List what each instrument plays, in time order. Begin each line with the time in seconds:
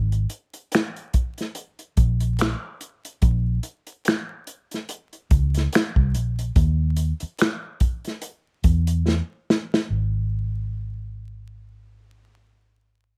Already playing: fingered electric bass G#1
0.12 closed hi-hat
0.30 closed hi-hat
0.53 closed hi-hat
0.72 finger snap, snare, closed hi-hat
0.96 closed hi-hat
1.13 kick, closed hi-hat
1.38 snare, closed hi-hat
1.55 closed hi-hat
1.79 closed hi-hat
1.97 fingered electric bass A#1, kick, closed hi-hat
2.20 closed hi-hat
2.39 finger snap, snare, closed hi-hat
2.81 closed hi-hat
3.05 closed hi-hat
3.22 fingered electric bass A#1, kick, closed hi-hat
3.63 closed hi-hat
3.87 closed hi-hat
4.05 finger snap, snare, closed hi-hat
4.47 closed hi-hat
4.71 snare, closed hi-hat
4.89 closed hi-hat
5.13 closed hi-hat
5.31 fingered electric bass C#2, kick, closed hi-hat
5.54 snare, closed hi-hat
5.73 finger snap, snare, closed hi-hat
5.96 fingered electric bass C2, kick
6.14 fingered electric bass A#1, closed hi-hat
6.39 closed hi-hat
6.56 fingered electric bass D#2, kick, closed hi-hat
6.96 closed hi-hat
7.20 muted fingered electric bass stroke, closed hi-hat
7.39 finger snap, snare, closed hi-hat
7.80 kick, closed hi-hat
8.04 snare, closed hi-hat
8.21 closed hi-hat
8.64 fingered electric bass E2, kick, closed hi-hat
8.87 closed hi-hat
9.08 snare
9.50 snare
9.74 snare
9.90 fingered electric bass G#1